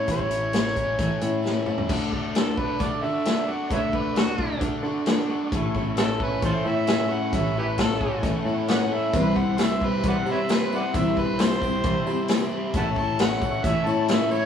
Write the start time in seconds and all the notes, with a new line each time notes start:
Already playing: A3 C#4 E4
0.07 A1 A2 E3 A3 C#4 E4 C#5, kick, closed hi-hat
0.11 C#5
0.19 kick
0.30 E3 A3 C#4 E4 C#5, closed hi-hat
0.52 E3 A3 C#4 E4 C#5, snare, closed hi-hat
0.67 snare
0.74 A3 C#4 E4 C#5, kick, closed hi-hat
0.98 A1 A2 E3 A3 C#4 E4 C#5, kick, closed hi-hat
1.21 A2 A3 C#4 E4 C#5, closed hi-hat
1.42 A3 C#4 E4 C#5, snare
1.66 A3 C#4 E4 C#5, mid tom
1.78 floor tom
1.89 D2 D3 A3 D4 F#4 A4 D5 F#5 D6, kick, crash
2.12 A3 D4 F#4 A4, kick
2.35 D3 A3 D4 F#4 A4, snare, closed hi-hat
2.57 D4 F#4 A4 B4, kick
2.79 D2 D3 A3 D4 F#4 A4 D5, kick, closed hi-hat
3.02 D3 D4 F#4 A4 E5
3.24 A3 D4 F#4 A4, snare, closed hi-hat
3.47 D4 F#4 A4 F#5
3.70 D2 D3 A3 D4 F#4 A4 B4 C#5 E5, kick, closed hi-hat
3.92 A3 D4 F#4 A4, kick
3.97 B4
4.15 D3 A3 D4 F#4 A4, snare, closed hi-hat
4.38 D4 F#4 A4, kick
4.61 D2 D3 A3 D4 F#4 A4, kick, closed hi-hat
4.83 D3 D4 F#4 A4
5.06 A3 D4 F#4, snare, closed hi-hat
5.10 A4
5.29 D4 F#4 A4
5.52 A1 A2 E3 A3 C#4 E4 A4 C#5 E5 C#6, kick, closed hi-hat
5.75 E3 C#4 E4 A4, kick
5.79 A3
5.97 E3 A3 C#4 E4 F#4 A4, snare, closed hi-hat
6.01 A4
6.20 A3 C#4 E4 A4 B4, kick
6.42 A1 A2 E3 A3 C#4 E4 F4 A4 C5, kick, closed hi-hat
6.65 A2 A3 C#4 E4 A4 E5
6.87 A3 C#4 E4 A4, snare, closed hi-hat
7.11 A3 C#4 E4 A4 F#5
7.33 A1 A2 E3 A3 C#4 E4 A4 F#5, kick, closed hi-hat
7.37 E5
7.55 E3 A3 C#4 E4 G4 A4 B4
7.78 E3 A3 C#4 E4 A4, kick, snare, closed hi-hat
7.91 snare
8.01 A3 C#4 E4 A4, kick
8.23 A1 A2 E3 A3 C#4 E4 A4, kick, closed hi-hat
8.45 A2 A3 C#4 E4 A4
8.68 A3 C#4 E4 A4 B4 D5 F#5, snare, closed hi-hat
8.91 A3 C#4 E4 A4 E5
9.13 C2 C3 E3 G3 C4 E4 G4 B4 C5 E5 C6, kick, closed hi-hat, tambourine
9.35 E3 G3 C4 E4 C5 F#5, kick, tambourine
9.57 E3 G3 C4 E4 C5, snare, closed hi-hat, tambourine
9.64 E5
9.80 G3 C4 E4 C5, kick
9.85 B4
10.03 C2 C3 E3 G3 C4 E4 C5, kick, closed hi-hat
10.08 B4 D5 F#5
10.26 C3 G3 C4 E4 C5, tambourine
10.31 B4 C#5 E5
10.48 G3 C4 C5, snare, closed hi-hat, tambourine
10.53 B4
10.71 G3 C4 E4 C5, tambourine
10.75 B4 D5 F#5
10.93 C2 C3 E3 G3 C4 E4 C5 E5, kick, closed hi-hat, tambourine
11.17 E3 G3 C4 E4 B4 C5, kick, tambourine
11.39 E3 G3 C4 E4 C5, snare, closed hi-hat, tambourine
11.43 C5
11.51 snare
11.61 G3 C4 E4 C5, kick, tambourine
11.84 C2 C3 E3 G3 C4 E4 C5, kick, closed hi-hat
12.06 C3 C4 E4 C5, tambourine
12.11 G3
12.28 G3 C4 E4, snare, closed hi-hat, tambourine
12.32 C5
12.51 G3 C4 E4 C5
12.73 A1 A2 E3 A3 C#4 E4 A4 C#5 E5 F#5 A5 C#6, kick, closed hi-hat, tambourine
12.96 E3 A3 C#4 E4 C#5 A5, kick, tambourine
13.19 E3 A3 C#4 E4 C#5 F#5, snare, closed hi-hat, tambourine
13.32 snare
13.41 A3 C#4 E4 C#5, kick, tambourine
13.64 A1 A2 E3 A3 C#4 E4 C#5 E5, kick, closed hi-hat
13.86 A2 A3 C#4 E4 C#5 A5, tambourine
14.08 A3 C#4 E4 C#5 E5, snare, closed hi-hat, tambourine
14.31 A3 C#4 E4 C#5, tambourine